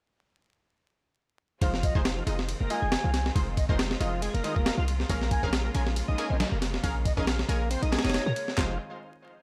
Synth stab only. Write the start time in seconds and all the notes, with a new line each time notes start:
1.62 G#3 D#4 F4 C5
1.95 G#3 D#4 F4 C5
2.27 G#3 D#4 F4 D#5
2.70 G#3 D#4 F4 D#5
3.35 G#3 D#4 F4 C5
3.69 G#3 D#4 F4 C5
4.00 G#3 D#4 F4 D#5
4.44 G#3 D#4 F4 D#5
5.09 C#4 G#4 A#4 F5
5.43 C#4 G#4 A#4 F5
5.74 C#4 G#4 A#4 G#5
6.18 C#4 G#4 A#4 G#5
6.83 C#4 G#4 A#4 F5
7.17 C#4 G#4 A#4 F5
7.48 C#4 G#4 A#4 G#5
7.92 C#4 G#4 A#4 G#5
8.57 G#3 D#4 F4 C5